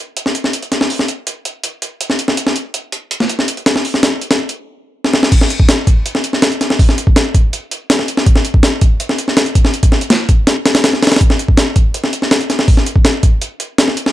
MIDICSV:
0, 0, Header, 1, 2, 480
1, 0, Start_track
1, 0, Tempo, 368098
1, 1174, Time_signature, 4, 2, 24, 8
1, 18415, End_track
2, 0, Start_track
2, 0, Title_t, "Drums"
2, 216, Note_on_c, 9, 42, 79
2, 337, Note_on_c, 9, 38, 42
2, 346, Note_off_c, 9, 42, 0
2, 455, Note_on_c, 9, 42, 61
2, 468, Note_off_c, 9, 38, 0
2, 576, Note_on_c, 9, 38, 36
2, 586, Note_off_c, 9, 42, 0
2, 696, Note_on_c, 9, 42, 84
2, 707, Note_off_c, 9, 38, 0
2, 815, Note_off_c, 9, 42, 0
2, 815, Note_on_c, 9, 42, 42
2, 935, Note_off_c, 9, 42, 0
2, 935, Note_on_c, 9, 38, 40
2, 935, Note_on_c, 9, 42, 64
2, 1056, Note_off_c, 9, 38, 0
2, 1056, Note_on_c, 9, 38, 55
2, 1065, Note_off_c, 9, 42, 0
2, 1174, Note_on_c, 9, 46, 75
2, 1186, Note_off_c, 9, 38, 0
2, 1295, Note_on_c, 9, 38, 40
2, 1304, Note_off_c, 9, 46, 0
2, 1414, Note_on_c, 9, 42, 65
2, 1426, Note_off_c, 9, 38, 0
2, 1544, Note_off_c, 9, 42, 0
2, 1653, Note_on_c, 9, 42, 81
2, 1784, Note_off_c, 9, 42, 0
2, 1894, Note_on_c, 9, 42, 66
2, 2024, Note_off_c, 9, 42, 0
2, 2132, Note_on_c, 9, 42, 83
2, 2263, Note_off_c, 9, 42, 0
2, 2373, Note_on_c, 9, 42, 65
2, 2504, Note_off_c, 9, 42, 0
2, 2616, Note_on_c, 9, 42, 81
2, 2734, Note_on_c, 9, 38, 40
2, 2746, Note_off_c, 9, 42, 0
2, 2854, Note_on_c, 9, 42, 65
2, 2864, Note_off_c, 9, 38, 0
2, 2974, Note_on_c, 9, 38, 52
2, 2984, Note_off_c, 9, 42, 0
2, 3094, Note_on_c, 9, 42, 84
2, 3105, Note_off_c, 9, 38, 0
2, 3216, Note_on_c, 9, 38, 51
2, 3224, Note_off_c, 9, 42, 0
2, 3334, Note_on_c, 9, 42, 65
2, 3346, Note_off_c, 9, 38, 0
2, 3464, Note_off_c, 9, 42, 0
2, 3573, Note_on_c, 9, 42, 77
2, 3703, Note_off_c, 9, 42, 0
2, 3813, Note_on_c, 9, 42, 66
2, 3943, Note_off_c, 9, 42, 0
2, 4055, Note_on_c, 9, 42, 82
2, 4177, Note_on_c, 9, 38, 44
2, 4185, Note_off_c, 9, 42, 0
2, 4296, Note_on_c, 9, 42, 64
2, 4307, Note_off_c, 9, 38, 0
2, 4418, Note_on_c, 9, 38, 37
2, 4427, Note_off_c, 9, 42, 0
2, 4538, Note_on_c, 9, 42, 83
2, 4548, Note_off_c, 9, 38, 0
2, 4658, Note_off_c, 9, 42, 0
2, 4658, Note_on_c, 9, 42, 41
2, 4775, Note_off_c, 9, 42, 0
2, 4775, Note_on_c, 9, 38, 99
2, 4775, Note_on_c, 9, 42, 74
2, 4899, Note_off_c, 9, 38, 0
2, 4899, Note_on_c, 9, 38, 54
2, 4905, Note_off_c, 9, 42, 0
2, 5017, Note_on_c, 9, 46, 78
2, 5029, Note_off_c, 9, 38, 0
2, 5138, Note_on_c, 9, 38, 41
2, 5148, Note_off_c, 9, 46, 0
2, 5256, Note_off_c, 9, 38, 0
2, 5256, Note_on_c, 9, 38, 102
2, 5256, Note_on_c, 9, 42, 76
2, 5386, Note_off_c, 9, 38, 0
2, 5386, Note_off_c, 9, 42, 0
2, 5496, Note_on_c, 9, 42, 54
2, 5616, Note_off_c, 9, 42, 0
2, 5616, Note_on_c, 9, 38, 99
2, 5616, Note_on_c, 9, 42, 75
2, 5746, Note_off_c, 9, 38, 0
2, 5746, Note_off_c, 9, 42, 0
2, 5856, Note_on_c, 9, 42, 60
2, 5986, Note_off_c, 9, 42, 0
2, 6579, Note_on_c, 9, 38, 50
2, 6696, Note_off_c, 9, 38, 0
2, 6696, Note_on_c, 9, 38, 74
2, 6819, Note_off_c, 9, 38, 0
2, 6819, Note_on_c, 9, 38, 78
2, 6935, Note_on_c, 9, 36, 114
2, 6936, Note_on_c, 9, 42, 92
2, 6936, Note_on_c, 9, 49, 97
2, 6950, Note_off_c, 9, 38, 0
2, 7059, Note_on_c, 9, 38, 55
2, 7066, Note_off_c, 9, 36, 0
2, 7066, Note_off_c, 9, 42, 0
2, 7066, Note_off_c, 9, 49, 0
2, 7176, Note_on_c, 9, 42, 68
2, 7190, Note_off_c, 9, 38, 0
2, 7297, Note_on_c, 9, 36, 95
2, 7306, Note_off_c, 9, 42, 0
2, 7415, Note_on_c, 9, 38, 117
2, 7415, Note_on_c, 9, 42, 85
2, 7427, Note_off_c, 9, 36, 0
2, 7545, Note_off_c, 9, 38, 0
2, 7545, Note_off_c, 9, 42, 0
2, 7656, Note_on_c, 9, 36, 97
2, 7656, Note_on_c, 9, 42, 68
2, 7786, Note_off_c, 9, 36, 0
2, 7787, Note_off_c, 9, 42, 0
2, 7897, Note_on_c, 9, 42, 88
2, 8018, Note_on_c, 9, 38, 46
2, 8028, Note_off_c, 9, 42, 0
2, 8135, Note_on_c, 9, 42, 67
2, 8148, Note_off_c, 9, 38, 0
2, 8257, Note_on_c, 9, 38, 38
2, 8266, Note_off_c, 9, 42, 0
2, 8375, Note_off_c, 9, 38, 0
2, 8375, Note_on_c, 9, 38, 118
2, 8375, Note_on_c, 9, 42, 89
2, 8499, Note_off_c, 9, 42, 0
2, 8499, Note_on_c, 9, 42, 43
2, 8505, Note_off_c, 9, 38, 0
2, 8618, Note_off_c, 9, 42, 0
2, 8618, Note_on_c, 9, 38, 44
2, 8618, Note_on_c, 9, 42, 69
2, 8741, Note_off_c, 9, 38, 0
2, 8741, Note_on_c, 9, 38, 58
2, 8749, Note_off_c, 9, 42, 0
2, 8858, Note_on_c, 9, 36, 113
2, 8859, Note_on_c, 9, 46, 85
2, 8871, Note_off_c, 9, 38, 0
2, 8982, Note_on_c, 9, 38, 43
2, 8988, Note_off_c, 9, 36, 0
2, 8990, Note_off_c, 9, 46, 0
2, 9101, Note_on_c, 9, 42, 71
2, 9112, Note_off_c, 9, 38, 0
2, 9219, Note_on_c, 9, 36, 97
2, 9231, Note_off_c, 9, 42, 0
2, 9339, Note_on_c, 9, 38, 113
2, 9339, Note_on_c, 9, 42, 87
2, 9349, Note_off_c, 9, 36, 0
2, 9469, Note_off_c, 9, 38, 0
2, 9469, Note_off_c, 9, 42, 0
2, 9578, Note_on_c, 9, 36, 97
2, 9579, Note_on_c, 9, 42, 70
2, 9708, Note_off_c, 9, 36, 0
2, 9709, Note_off_c, 9, 42, 0
2, 9820, Note_on_c, 9, 42, 86
2, 9950, Note_off_c, 9, 42, 0
2, 10060, Note_on_c, 9, 42, 68
2, 10190, Note_off_c, 9, 42, 0
2, 10300, Note_on_c, 9, 38, 117
2, 10300, Note_on_c, 9, 42, 89
2, 10420, Note_off_c, 9, 38, 0
2, 10420, Note_on_c, 9, 38, 44
2, 10431, Note_off_c, 9, 42, 0
2, 10538, Note_on_c, 9, 42, 68
2, 10550, Note_off_c, 9, 38, 0
2, 10659, Note_on_c, 9, 38, 57
2, 10669, Note_off_c, 9, 42, 0
2, 10777, Note_on_c, 9, 36, 118
2, 10777, Note_on_c, 9, 42, 90
2, 10789, Note_off_c, 9, 38, 0
2, 10896, Note_on_c, 9, 38, 54
2, 10907, Note_off_c, 9, 36, 0
2, 10908, Note_off_c, 9, 42, 0
2, 11014, Note_on_c, 9, 42, 71
2, 11026, Note_off_c, 9, 38, 0
2, 11137, Note_on_c, 9, 36, 99
2, 11144, Note_off_c, 9, 42, 0
2, 11254, Note_on_c, 9, 38, 115
2, 11254, Note_on_c, 9, 42, 85
2, 11268, Note_off_c, 9, 36, 0
2, 11385, Note_off_c, 9, 38, 0
2, 11385, Note_off_c, 9, 42, 0
2, 11493, Note_on_c, 9, 42, 69
2, 11496, Note_on_c, 9, 36, 99
2, 11624, Note_off_c, 9, 42, 0
2, 11626, Note_off_c, 9, 36, 0
2, 11735, Note_on_c, 9, 42, 89
2, 11858, Note_on_c, 9, 38, 46
2, 11865, Note_off_c, 9, 42, 0
2, 11977, Note_on_c, 9, 42, 70
2, 11988, Note_off_c, 9, 38, 0
2, 12099, Note_on_c, 9, 38, 39
2, 12107, Note_off_c, 9, 42, 0
2, 12216, Note_off_c, 9, 38, 0
2, 12216, Note_on_c, 9, 38, 116
2, 12216, Note_on_c, 9, 42, 91
2, 12337, Note_off_c, 9, 42, 0
2, 12337, Note_on_c, 9, 42, 45
2, 12346, Note_off_c, 9, 38, 0
2, 12458, Note_off_c, 9, 42, 0
2, 12458, Note_on_c, 9, 36, 99
2, 12458, Note_on_c, 9, 42, 82
2, 12579, Note_on_c, 9, 38, 53
2, 12588, Note_off_c, 9, 36, 0
2, 12589, Note_off_c, 9, 42, 0
2, 12696, Note_on_c, 9, 42, 66
2, 12709, Note_off_c, 9, 38, 0
2, 12817, Note_off_c, 9, 42, 0
2, 12817, Note_on_c, 9, 36, 102
2, 12817, Note_on_c, 9, 42, 79
2, 12935, Note_on_c, 9, 38, 50
2, 12948, Note_off_c, 9, 36, 0
2, 12948, Note_off_c, 9, 42, 0
2, 13056, Note_on_c, 9, 42, 61
2, 13066, Note_off_c, 9, 38, 0
2, 13173, Note_off_c, 9, 42, 0
2, 13173, Note_on_c, 9, 38, 115
2, 13173, Note_on_c, 9, 42, 86
2, 13303, Note_off_c, 9, 38, 0
2, 13303, Note_off_c, 9, 42, 0
2, 13415, Note_on_c, 9, 42, 70
2, 13416, Note_on_c, 9, 36, 98
2, 13545, Note_off_c, 9, 42, 0
2, 13547, Note_off_c, 9, 36, 0
2, 13654, Note_on_c, 9, 38, 106
2, 13654, Note_on_c, 9, 42, 79
2, 13784, Note_off_c, 9, 38, 0
2, 13784, Note_off_c, 9, 42, 0
2, 13895, Note_on_c, 9, 38, 104
2, 13895, Note_on_c, 9, 42, 79
2, 14015, Note_off_c, 9, 38, 0
2, 14015, Note_off_c, 9, 42, 0
2, 14015, Note_on_c, 9, 38, 108
2, 14015, Note_on_c, 9, 42, 80
2, 14135, Note_off_c, 9, 38, 0
2, 14135, Note_off_c, 9, 42, 0
2, 14135, Note_on_c, 9, 38, 115
2, 14135, Note_on_c, 9, 42, 91
2, 14257, Note_off_c, 9, 38, 0
2, 14257, Note_on_c, 9, 38, 43
2, 14265, Note_off_c, 9, 42, 0
2, 14377, Note_off_c, 9, 38, 0
2, 14377, Note_on_c, 9, 38, 89
2, 14377, Note_on_c, 9, 42, 69
2, 14436, Note_off_c, 9, 38, 0
2, 14436, Note_off_c, 9, 42, 0
2, 14436, Note_on_c, 9, 38, 92
2, 14436, Note_on_c, 9, 42, 67
2, 14496, Note_off_c, 9, 38, 0
2, 14496, Note_off_c, 9, 42, 0
2, 14496, Note_on_c, 9, 38, 95
2, 14496, Note_on_c, 9, 42, 71
2, 14558, Note_off_c, 9, 38, 0
2, 14558, Note_off_c, 9, 42, 0
2, 14558, Note_on_c, 9, 38, 91
2, 14558, Note_on_c, 9, 42, 71
2, 14616, Note_off_c, 9, 42, 0
2, 14616, Note_on_c, 9, 36, 117
2, 14616, Note_on_c, 9, 42, 92
2, 14688, Note_off_c, 9, 38, 0
2, 14736, Note_on_c, 9, 38, 56
2, 14746, Note_off_c, 9, 36, 0
2, 14747, Note_off_c, 9, 42, 0
2, 14857, Note_on_c, 9, 42, 69
2, 14867, Note_off_c, 9, 38, 0
2, 14976, Note_on_c, 9, 36, 94
2, 14987, Note_off_c, 9, 42, 0
2, 15093, Note_on_c, 9, 38, 111
2, 15093, Note_on_c, 9, 42, 85
2, 15106, Note_off_c, 9, 36, 0
2, 15224, Note_off_c, 9, 38, 0
2, 15224, Note_off_c, 9, 42, 0
2, 15332, Note_on_c, 9, 42, 70
2, 15334, Note_on_c, 9, 36, 97
2, 15463, Note_off_c, 9, 42, 0
2, 15464, Note_off_c, 9, 36, 0
2, 15574, Note_on_c, 9, 42, 89
2, 15695, Note_on_c, 9, 38, 46
2, 15704, Note_off_c, 9, 42, 0
2, 15816, Note_on_c, 9, 42, 68
2, 15826, Note_off_c, 9, 38, 0
2, 15937, Note_on_c, 9, 38, 39
2, 15947, Note_off_c, 9, 42, 0
2, 16055, Note_off_c, 9, 38, 0
2, 16055, Note_on_c, 9, 38, 119
2, 16055, Note_on_c, 9, 42, 90
2, 16178, Note_off_c, 9, 42, 0
2, 16178, Note_on_c, 9, 42, 46
2, 16185, Note_off_c, 9, 38, 0
2, 16297, Note_off_c, 9, 42, 0
2, 16297, Note_on_c, 9, 38, 45
2, 16297, Note_on_c, 9, 42, 68
2, 16416, Note_off_c, 9, 38, 0
2, 16416, Note_on_c, 9, 38, 60
2, 16427, Note_off_c, 9, 42, 0
2, 16534, Note_on_c, 9, 36, 116
2, 16534, Note_on_c, 9, 46, 85
2, 16547, Note_off_c, 9, 38, 0
2, 16655, Note_on_c, 9, 38, 42
2, 16664, Note_off_c, 9, 46, 0
2, 16665, Note_off_c, 9, 36, 0
2, 16775, Note_on_c, 9, 42, 71
2, 16786, Note_off_c, 9, 38, 0
2, 16895, Note_on_c, 9, 36, 95
2, 16905, Note_off_c, 9, 42, 0
2, 17013, Note_on_c, 9, 38, 115
2, 17013, Note_on_c, 9, 42, 86
2, 17025, Note_off_c, 9, 36, 0
2, 17144, Note_off_c, 9, 38, 0
2, 17144, Note_off_c, 9, 42, 0
2, 17253, Note_on_c, 9, 42, 69
2, 17254, Note_on_c, 9, 36, 98
2, 17383, Note_off_c, 9, 42, 0
2, 17384, Note_off_c, 9, 36, 0
2, 17493, Note_on_c, 9, 42, 90
2, 17624, Note_off_c, 9, 42, 0
2, 17733, Note_on_c, 9, 42, 69
2, 17864, Note_off_c, 9, 42, 0
2, 17974, Note_on_c, 9, 38, 119
2, 17974, Note_on_c, 9, 42, 91
2, 18097, Note_off_c, 9, 38, 0
2, 18097, Note_on_c, 9, 38, 43
2, 18105, Note_off_c, 9, 42, 0
2, 18216, Note_on_c, 9, 42, 71
2, 18227, Note_off_c, 9, 38, 0
2, 18338, Note_on_c, 9, 38, 56
2, 18346, Note_off_c, 9, 42, 0
2, 18415, Note_off_c, 9, 38, 0
2, 18415, End_track
0, 0, End_of_file